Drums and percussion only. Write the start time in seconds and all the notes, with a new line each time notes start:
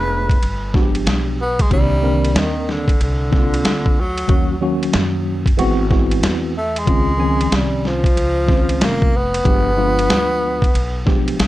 0.29 kick, ride
0.43 ride
0.74 kick, snare
0.95 ride
1.07 snare, hi-hat pedal, ride
1.59 kick, ride
1.71 kick, ride
2.25 ride
2.36 snare, hi-hat pedal, ride
2.69 snare
2.88 kick, ride
3.01 ride
3.33 kick, snare
3.54 ride
3.65 snare, hi-hat pedal, ride
3.86 kick
4.18 ride
4.29 kick, ride
4.83 ride
4.93 snare, hi-hat pedal, ride
5.46 kick, ride
5.59 ride
5.91 kick, snare
6.11 ride
6.23 snare, hi-hat pedal, ride
6.76 ride
6.87 kick, ride
7.41 ride
7.52 snare, hi-hat pedal, ride
7.85 snare
8.04 kick, ride
8.17 ride
8.49 kick, snare
8.69 ride
8.81 snare, hi-hat pedal, ride
9.02 kick
9.34 ride
9.45 kick, ride
9.99 ride
10.10 snare, hi-hat pedal, ride
10.62 kick, ride
10.75 ride
11.07 kick, snare
11.28 ride
11.40 snare, hi-hat pedal, ride